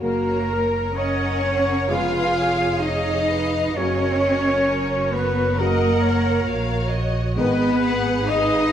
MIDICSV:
0, 0, Header, 1, 11, 480
1, 0, Start_track
1, 0, Key_signature, 6, "major"
1, 0, Tempo, 946372
1, 10, Time_signature, 4, 2, 24, 8
1, 970, Tempo, 925926
1, 2410, Tempo, 900901
1, 4558, End_track
2, 0, Start_track
2, 0, Title_t, "Violin section"
2, 0, Program_c, 0, 48
2, 12, Note_on_c, 0, 73, 44
2, 476, Note_off_c, 0, 73, 0
2, 504, Note_on_c, 0, 78, 46
2, 971, Note_on_c, 0, 80, 48
2, 974, Note_off_c, 0, 78, 0
2, 1439, Note_off_c, 0, 80, 0
2, 1465, Note_on_c, 0, 77, 52
2, 1939, Note_off_c, 0, 77, 0
2, 1944, Note_on_c, 0, 75, 48
2, 2406, Note_off_c, 0, 75, 0
2, 2409, Note_on_c, 0, 73, 51
2, 2880, Note_on_c, 0, 78, 56
2, 2881, Note_off_c, 0, 73, 0
2, 3358, Note_off_c, 0, 78, 0
2, 3366, Note_on_c, 0, 77, 61
2, 3593, Note_on_c, 0, 75, 60
2, 3603, Note_off_c, 0, 77, 0
2, 3832, Note_off_c, 0, 75, 0
2, 3838, Note_on_c, 0, 75, 60
2, 4077, Note_off_c, 0, 75, 0
2, 4080, Note_on_c, 0, 78, 64
2, 4318, Note_off_c, 0, 78, 0
2, 4318, Note_on_c, 0, 77, 57
2, 4558, Note_off_c, 0, 77, 0
2, 4558, End_track
3, 0, Start_track
3, 0, Title_t, "Clarinet"
3, 0, Program_c, 1, 71
3, 10, Note_on_c, 1, 70, 58
3, 475, Note_off_c, 1, 70, 0
3, 489, Note_on_c, 1, 73, 58
3, 976, Note_on_c, 1, 77, 70
3, 984, Note_off_c, 1, 73, 0
3, 1441, Note_off_c, 1, 77, 0
3, 1445, Note_on_c, 1, 75, 64
3, 1931, Note_on_c, 1, 73, 71
3, 1939, Note_off_c, 1, 75, 0
3, 2650, Note_on_c, 1, 71, 56
3, 2658, Note_off_c, 1, 73, 0
3, 2887, Note_on_c, 1, 70, 67
3, 2895, Note_off_c, 1, 71, 0
3, 3601, Note_off_c, 1, 70, 0
3, 3844, Note_on_c, 1, 71, 74
3, 4333, Note_on_c, 1, 75, 73
3, 4341, Note_off_c, 1, 71, 0
3, 4558, Note_off_c, 1, 75, 0
3, 4558, End_track
4, 0, Start_track
4, 0, Title_t, "Flute"
4, 0, Program_c, 2, 73
4, 10, Note_on_c, 2, 70, 54
4, 496, Note_on_c, 2, 73, 57
4, 504, Note_off_c, 2, 70, 0
4, 982, Note_on_c, 2, 77, 62
4, 989, Note_off_c, 2, 73, 0
4, 1449, Note_off_c, 2, 77, 0
4, 1452, Note_on_c, 2, 75, 64
4, 1934, Note_on_c, 2, 73, 66
4, 1941, Note_off_c, 2, 75, 0
4, 2643, Note_on_c, 2, 71, 55
4, 2651, Note_off_c, 2, 73, 0
4, 2884, Note_on_c, 2, 70, 61
4, 2892, Note_off_c, 2, 71, 0
4, 3600, Note_off_c, 2, 70, 0
4, 3850, Note_on_c, 2, 71, 66
4, 4331, Note_on_c, 2, 75, 75
4, 4339, Note_off_c, 2, 71, 0
4, 4558, Note_off_c, 2, 75, 0
4, 4558, End_track
5, 0, Start_track
5, 0, Title_t, "Trumpet section"
5, 0, Program_c, 3, 61
5, 5, Note_on_c, 3, 70, 62
5, 472, Note_off_c, 3, 70, 0
5, 489, Note_on_c, 3, 73, 61
5, 967, Note_off_c, 3, 73, 0
5, 969, Note_on_c, 3, 77, 66
5, 1445, Note_on_c, 3, 75, 55
5, 1448, Note_off_c, 3, 77, 0
5, 1919, Note_off_c, 3, 75, 0
5, 1925, Note_on_c, 3, 73, 73
5, 2628, Note_off_c, 3, 73, 0
5, 2642, Note_on_c, 3, 71, 59
5, 2880, Note_off_c, 3, 71, 0
5, 2881, Note_on_c, 3, 70, 64
5, 3598, Note_off_c, 3, 70, 0
5, 3840, Note_on_c, 3, 71, 75
5, 4302, Note_off_c, 3, 71, 0
5, 4319, Note_on_c, 3, 75, 79
5, 4558, Note_off_c, 3, 75, 0
5, 4558, End_track
6, 0, Start_track
6, 0, Title_t, "Violin section"
6, 0, Program_c, 4, 48
6, 4, Note_on_c, 4, 70, 46
6, 472, Note_off_c, 4, 70, 0
6, 489, Note_on_c, 4, 73, 58
6, 964, Note_on_c, 4, 77, 65
6, 967, Note_off_c, 4, 73, 0
6, 1443, Note_on_c, 4, 75, 63
6, 1445, Note_off_c, 4, 77, 0
6, 1928, Note_off_c, 4, 75, 0
6, 1932, Note_on_c, 4, 73, 61
6, 2646, Note_off_c, 4, 73, 0
6, 2652, Note_on_c, 4, 71, 52
6, 2880, Note_off_c, 4, 71, 0
6, 2890, Note_on_c, 4, 70, 57
6, 3603, Note_off_c, 4, 70, 0
6, 3835, Note_on_c, 4, 71, 61
6, 4300, Note_off_c, 4, 71, 0
6, 4312, Note_on_c, 4, 75, 70
6, 4558, Note_off_c, 4, 75, 0
6, 4558, End_track
7, 0, Start_track
7, 0, Title_t, "Viola section"
7, 0, Program_c, 5, 48
7, 7, Note_on_c, 5, 70, 43
7, 10, Note_on_c, 5, 66, 44
7, 238, Note_off_c, 5, 66, 0
7, 241, Note_off_c, 5, 70, 0
7, 247, Note_on_c, 5, 70, 55
7, 482, Note_off_c, 5, 70, 0
7, 486, Note_on_c, 5, 75, 50
7, 489, Note_on_c, 5, 70, 49
7, 722, Note_on_c, 5, 73, 50
7, 728, Note_off_c, 5, 75, 0
7, 957, Note_off_c, 5, 70, 0
7, 964, Note_on_c, 5, 68, 54
7, 965, Note_off_c, 5, 73, 0
7, 967, Note_on_c, 5, 71, 54
7, 1204, Note_on_c, 5, 73, 50
7, 1209, Note_off_c, 5, 71, 0
7, 1437, Note_off_c, 5, 73, 0
7, 1443, Note_on_c, 5, 73, 52
7, 1679, Note_on_c, 5, 71, 51
7, 1680, Note_off_c, 5, 73, 0
7, 1927, Note_off_c, 5, 71, 0
7, 1928, Note_off_c, 5, 68, 0
7, 1929, Note_on_c, 5, 70, 47
7, 1931, Note_on_c, 5, 66, 47
7, 2166, Note_off_c, 5, 70, 0
7, 2172, Note_on_c, 5, 70, 54
7, 2862, Note_off_c, 5, 66, 0
7, 2867, Note_off_c, 5, 70, 0
7, 2878, Note_on_c, 5, 70, 57
7, 2881, Note_on_c, 5, 75, 60
7, 3115, Note_on_c, 5, 73, 55
7, 3119, Note_off_c, 5, 75, 0
7, 3350, Note_off_c, 5, 73, 0
7, 3357, Note_off_c, 5, 70, 0
7, 3357, Note_on_c, 5, 66, 54
7, 3357, Note_on_c, 5, 73, 56
7, 3831, Note_off_c, 5, 73, 0
7, 3832, Note_off_c, 5, 66, 0
7, 3838, Note_on_c, 5, 68, 59
7, 3838, Note_on_c, 5, 71, 53
7, 4313, Note_off_c, 5, 71, 0
7, 4325, Note_on_c, 5, 71, 66
7, 4558, Note_off_c, 5, 68, 0
7, 4558, Note_off_c, 5, 71, 0
7, 4558, End_track
8, 0, Start_track
8, 0, Title_t, "Cello section"
8, 0, Program_c, 6, 48
8, 2, Note_on_c, 6, 58, 65
8, 471, Note_off_c, 6, 58, 0
8, 489, Note_on_c, 6, 61, 71
8, 957, Note_off_c, 6, 61, 0
8, 967, Note_on_c, 6, 65, 74
8, 1437, Note_off_c, 6, 65, 0
8, 1441, Note_on_c, 6, 63, 66
8, 1923, Note_on_c, 6, 61, 77
8, 1927, Note_off_c, 6, 63, 0
8, 2642, Note_off_c, 6, 61, 0
8, 2643, Note_on_c, 6, 59, 70
8, 2880, Note_off_c, 6, 59, 0
8, 2883, Note_on_c, 6, 58, 70
8, 3600, Note_off_c, 6, 58, 0
8, 3839, Note_on_c, 6, 59, 87
8, 4302, Note_off_c, 6, 59, 0
8, 4321, Note_on_c, 6, 63, 86
8, 4558, Note_off_c, 6, 63, 0
8, 4558, End_track
9, 0, Start_track
9, 0, Title_t, "French horn section"
9, 0, Program_c, 7, 60
9, 0, Note_on_c, 7, 66, 47
9, 2, Note_on_c, 7, 58, 47
9, 191, Note_off_c, 7, 66, 0
9, 193, Note_off_c, 7, 58, 0
9, 955, Note_on_c, 7, 59, 49
9, 958, Note_on_c, 7, 65, 46
9, 1144, Note_off_c, 7, 59, 0
9, 1145, Note_off_c, 7, 65, 0
9, 1931, Note_on_c, 7, 58, 53
9, 1934, Note_on_c, 7, 66, 52
9, 2115, Note_off_c, 7, 58, 0
9, 2116, Note_off_c, 7, 66, 0
9, 2894, Note_on_c, 7, 66, 58
9, 2896, Note_on_c, 7, 58, 57
9, 3067, Note_off_c, 7, 66, 0
9, 3068, Note_off_c, 7, 58, 0
9, 3847, Note_on_c, 7, 59, 64
9, 3851, Note_on_c, 7, 63, 60
9, 4026, Note_off_c, 7, 59, 0
9, 4029, Note_off_c, 7, 63, 0
9, 4558, End_track
10, 0, Start_track
10, 0, Title_t, "Trombone section"
10, 0, Program_c, 8, 61
10, 7, Note_on_c, 8, 49, 46
10, 9, Note_on_c, 8, 54, 47
10, 196, Note_off_c, 8, 49, 0
10, 197, Note_off_c, 8, 54, 0
10, 955, Note_on_c, 8, 56, 47
10, 956, Note_on_c, 8, 49, 52
10, 1144, Note_off_c, 8, 56, 0
10, 1145, Note_off_c, 8, 49, 0
10, 1925, Note_on_c, 8, 49, 53
10, 1929, Note_on_c, 8, 54, 52
10, 2112, Note_off_c, 8, 49, 0
10, 2114, Note_off_c, 8, 54, 0
10, 2877, Note_on_c, 8, 54, 57
10, 2879, Note_on_c, 8, 49, 51
10, 3058, Note_off_c, 8, 54, 0
10, 3059, Note_off_c, 8, 49, 0
10, 3830, Note_on_c, 8, 56, 59
10, 3834, Note_on_c, 8, 51, 57
10, 4017, Note_off_c, 8, 56, 0
10, 4020, Note_off_c, 8, 51, 0
10, 4558, End_track
11, 0, Start_track
11, 0, Title_t, "Double bass section"
11, 0, Program_c, 10, 48
11, 6, Note_on_c, 10, 30, 52
11, 947, Note_off_c, 10, 30, 0
11, 964, Note_on_c, 10, 29, 53
11, 1928, Note_off_c, 10, 29, 0
11, 1930, Note_on_c, 10, 30, 56
11, 3337, Note_off_c, 10, 30, 0
11, 3353, Note_on_c, 10, 34, 56
11, 3829, Note_off_c, 10, 34, 0
11, 3841, Note_on_c, 10, 32, 66
11, 4558, Note_off_c, 10, 32, 0
11, 4558, End_track
0, 0, End_of_file